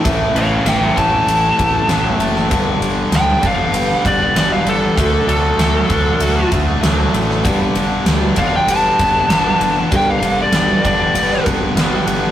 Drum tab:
RD |x-x-x-x-x-x-x-x-|x-x-x-x-x-x-x-x-|x-x-x-x-x-x-x-x-|x-x-x-x-x-x-x-x-|
SD |----o-------o--o|----o----o--o---|----o-------o--o|----o-------o---|
BD |o-----o---o-----|o-----o---o-----|o-----o---o-----|o-----o---o-----|

RD |x-x-x-x-x-x-x-x-|
SD |----o----o--o---|
BD |o-----o---o-----|